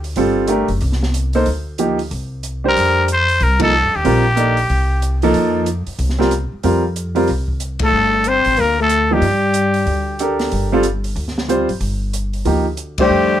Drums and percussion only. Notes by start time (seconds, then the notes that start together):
0.04 open hi-hat
0.16 open hi-hat
0.47 closed hi-hat
0.68 open hi-hat
0.81 open hi-hat
0.92 snare
1.03 snare
1.14 closed hi-hat
1.33 open hi-hat
1.46 open hi-hat
1.78 closed hi-hat
1.99 open hi-hat
2.11 open hi-hat
2.43 closed hi-hat
2.76 open hi-hat
3.08 closed hi-hat
3.28 open hi-hat
3.40 open hi-hat
3.60 kick, ride
4.05 open hi-hat
4.37 closed hi-hat
4.57 open hi-hat
4.70 open hi-hat
5.02 closed hi-hat
5.22 open hi-hat
5.34 open hi-hat
5.66 closed hi-hat
5.87 open hi-hat
5.99 open hi-hat
6.09 snare
6.21 snare
6.31 closed hi-hat
6.63 open hi-hat
6.96 closed hi-hat
7.16 open hi-hat
7.27 open hi-hat
7.48 kick
7.60 closed hi-hat
7.79 kick, ride
8.24 closed hi-hat
8.44 open hi-hat
8.57 open hi-hat
8.89 closed hi-hat
9.22 open hi-hat
9.54 closed hi-hat
9.74 open hi-hat
9.87 open hi-hat
10.19 closed hi-hat
10.39 snare, open hi-hat
10.52 open hi-hat
10.83 closed hi-hat
11.04 open hi-hat
11.16 open hi-hat
11.28 snare
11.38 snare
11.49 closed hi-hat
11.69 open hi-hat
11.81 open hi-hat
12.13 closed hi-hat
12.33 open hi-hat
12.45 open hi-hat
12.77 closed hi-hat
12.98 kick, ride